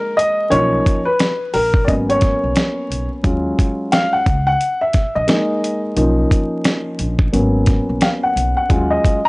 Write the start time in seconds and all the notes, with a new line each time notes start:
Already playing: G#3 A#3 D#4 A#4
0.17 D#5, closed hi-hat
0.50 B1 F3 A#3 C#4 D#4 C#5, closed hi-hat
0.86 kick, closed hi-hat
1.05 B4
1.20 snare, closed hi-hat
1.54 A#1 A#4, open hi-hat
1.74 kick
1.85 G#1 F#3 A#3 B3 C#4 D5 D#5, kick
1.89 closed hi-hat
2.09 C#5, closed hi-hat
2.21 kick, snare, closed hi-hat
2.44 B1
2.56 snare, closed hi-hat
2.90 B1, closed hi-hat
3.23 D#2 F#3 G#3 C#4 F4, kick, closed hi-hat
3.59 kick, closed hi-hat
3.92 F5, snare, closed hi-hat
4.13 F#5
4.26 C#2, kick, closed hi-hat
4.47 F#5
4.61 closed hi-hat
4.81 E5
4.93 kick, snare, closed hi-hat
5.15 A#1 D#5
5.27 G#3 A#3 D#4, snare, closed hi-hat
5.64 closed hi-hat
5.96 B1 F3 A#3 C#4 D#4, closed hi-hat
6.31 kick, closed hi-hat
6.64 snare, closed hi-hat
6.99 A#1, closed hi-hat
7.19 kick
7.32 G#1 F#3 A#3 B3 C#4, closed hi-hat
7.66 kick, snare, closed hi-hat
7.89 B1
8.01 F5, snare, closed hi-hat
8.23 F#5
8.36 B1, closed hi-hat
8.57 F#5
8.69 D#2 F#3 G#3 C#4 F4, kick, closed hi-hat
8.90 D#5
9.04 kick, closed hi-hat
9.25 A#5